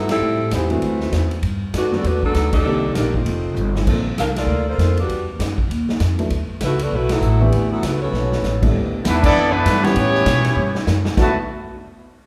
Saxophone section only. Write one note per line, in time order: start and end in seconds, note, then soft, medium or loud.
0.00 0.10 F#3 medium
0.11 0.50 G3 medium
0.11 0.49 C4 medium
0.11 0.50 E4 medium
0.11 0.49 A4 medium
0.53 0.70 E3 medium
0.53 0.70 B3 medium
0.53 0.70 C4 medium
0.53 0.70 G4 medium
0.71 1.32 E3 medium
0.71 1.32 A3 medium
0.71 1.32 C4 medium
0.71 1.32 F#4 medium
1.77 1.93 A3 medium
1.77 1.93 D4 medium
1.77 1.93 F#4 medium
1.77 1.93 B4 medium
1.95 2.05 B3 medium
1.95 2.05 F#4 medium
1.95 2.05 A4 medium
1.95 2.05 D5 medium
2.06 2.24 A3 medium
2.06 2.24 D4 medium
2.06 2.24 F#4 medium
2.06 2.24 B4 loud
2.24 2.52 F#3 medium
2.24 2.52 B3 medium
2.24 2.52 D4 medium
2.24 2.52 A4 loud
2.53 2.93 G3 medium
2.53 2.93 D4 medium
2.53 2.93 D#4 medium
2.53 2.93 A4 medium
2.95 3.14 D#3 medium
2.95 3.14 A#3 medium
2.95 3.14 D4 medium
2.95 3.14 G4 medium
3.15 3.76 A3 medium
3.15 3.76 C4 medium
3.15 3.76 D#4 medium
3.15 3.76 F4 medium
4.19 4.28 D4 medium
4.19 4.27 A4 medium
4.19 4.28 A#4 medium
4.19 4.27 F5 loud
4.38 4.66 A#3 medium
4.38 4.66 F4 medium
4.38 4.66 A4 medium
4.38 4.66 D5 medium
4.70 4.99 A#3 medium
4.70 4.99 F4 medium
4.70 4.99 A4 medium
4.70 4.99 C5 medium
5.00 5.27 G3 medium
5.00 5.27 D4 medium
5.00 5.27 F#4 medium
5.00 5.27 B4 medium
6.65 6.81 A3 medium
6.65 6.81 E4 medium
6.65 6.81 F#4 medium
6.65 6.80 B4 medium
6.83 6.93 B3 medium
6.83 6.94 F#4 medium
6.83 6.93 A4 medium
6.83 6.94 D5 loud
6.95 7.12 A3 medium
6.95 7.11 E4 medium
6.95 7.12 F#4 medium
6.95 7.12 B4 medium
7.12 7.42 F#3 medium
7.12 7.41 B3 medium
7.12 7.42 E4 medium
7.12 7.42 A4 medium
7.42 7.72 E3 medium
7.42 7.72 A3 medium
7.42 7.70 B3 medium
7.42 7.72 G4 medium
7.72 7.83 F#3 medium
7.72 7.82 B3 medium
7.72 7.83 E4 medium
7.72 7.83 A4 medium
7.84 8.03 A3 medium
7.84 8.02 E4 medium
7.84 8.02 F#4 medium
7.84 8.03 B4 medium
8.02 8.59 B3 medium
8.02 8.59 F#4 medium
8.02 8.59 A4 medium
8.02 8.59 C#5 medium